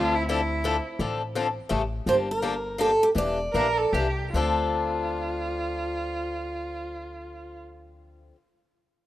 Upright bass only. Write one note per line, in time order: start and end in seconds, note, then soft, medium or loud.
0.00 0.78 D2 medium
0.99 1.56 A1 medium
1.71 1.99 A1 medium
2.06 2.93 G1 medium
3.15 3.46 E1 medium
3.54 3.87 A#1 medium
3.93 4.27 C2 medium
4.34 8.30 D2 medium